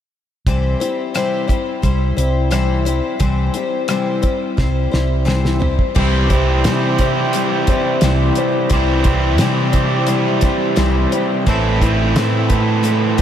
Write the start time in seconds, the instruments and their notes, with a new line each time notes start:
0.47 fingered electric bass C2, twelve-string acoustic guitar C3 E3 G3 C4 E4 C5, kick, closed hi-hat
0.80 twelve-string acoustic guitar G3 C4 E4 C5, closed hi-hat
1.14 twelve-string acoustic guitar C3 E3 G3 C4 E4 C5, cross-stick, closed hi-hat
1.48 twelve-string acoustic guitar G3 C4 E4 C5, kick, closed hi-hat
1.82 fingered electric bass C2, twelve-string acoustic guitar G3 C4 E4 C5, kick, closed hi-hat
2.17 fingered electric bass C2, twelve-string acoustic guitar G3 C4 E4 C5, closed hi-hat
2.50 twelve-string acoustic guitar C3 E3 G3 C4 E4 C5, cross-stick, closed hi-hat
2.85 twelve-string acoustic guitar G3 C4 E4 C5, closed hi-hat
3.19 fingered electric bass C2, twelve-string acoustic guitar C3 E3 G3 C4 E4 C5, kick, closed hi-hat
3.54 twelve-string acoustic guitar G3 C4 E4 C5, closed hi-hat
3.88 twelve-string acoustic guitar C3 E3 G3 C4 E4 C5, cross-stick, closed hi-hat
4.22 twelve-string acoustic guitar G3 C4 E4 C5, kick, closed hi-hat
4.57 fingered electric bass C2, twelve-string acoustic guitar G3 C4 E4 C5, kick, snare
4.91 fingered electric bass C2, twelve-string acoustic guitar G3 C4 E4 C5, snare
5.25 twelve-string acoustic guitar C3 E3 G3 C4 E4 C5, snare
5.45 snare
5.59 twelve-string acoustic guitar G3 C4 E4 C5, floor tom
5.79 kick
5.95 fingered electric bass C2, twelve-string acoustic guitar C3 E3 G3 C4 E4 C5, kick, crash
6.30 twelve-string acoustic guitar G3 C4 E4 C5, kick, closed hi-hat
6.64 twelve-string acoustic guitar C3 E3 G3 C4 E4 C5, fingered electric bass C3, snare, closed hi-hat
6.99 twelve-string acoustic guitar G3 C4 E4 C5, kick, closed hi-hat
7.33 twelve-string acoustic guitar G3 C4 E4 C5, closed hi-hat
7.67 twelve-string acoustic guitar C4 E4 C5, kick, closed hi-hat
7.71 twelve-string acoustic guitar G3
8.01 fingered electric bass C2, twelve-string acoustic guitar C3 E3 G3 C4 E4 C5, snare, closed hi-hat
8.35 twelve-string acoustic guitar C4 E4 C5, closed hi-hat
8.40 twelve-string acoustic guitar G3
8.70 fingered electric bass C2, twelve-string acoustic guitar C3 E3 G3 C4 E4 C5, kick, closed hi-hat
9.04 twelve-string acoustic guitar G3 C4 E4 C5, kick, closed hi-hat
9.38 twelve-string acoustic guitar C3 E3 G3 C4 E4 C5, fingered electric bass C3, snare, closed hi-hat
9.72 twelve-string acoustic guitar G3 C4 E4 C5, kick, closed hi-hat
10.06 twelve-string acoustic guitar G3 C4 E4 C5, closed hi-hat
10.41 twelve-string acoustic guitar G3 C4 E4 C5, kick, snare, closed hi-hat
10.76 fingered electric bass C2, twelve-string acoustic guitar C3 E3 G3 C4 E4 C5, snare, closed hi-hat
11.12 twelve-string acoustic guitar G3 C4 E4 C5, closed hi-hat
11.46 fingered electric bass A1, twelve-string acoustic guitar A2 E3 A3 C4 E4 B4, kick, closed hi-hat
11.82 twelve-string acoustic guitar A3 C4 E4 B4, kick, closed hi-hat
12.16 twelve-string acoustic guitar A2 E3 A3 C4 E4 B4, fingered electric bass A2, snare, closed hi-hat
12.49 twelve-string acoustic guitar A3 C4 E4 B4, kick, closed hi-hat
12.83 twelve-string acoustic guitar A3 C4 E4 B4, closed hi-hat
13.18 twelve-string acoustic guitar E4 B4, closed hi-hat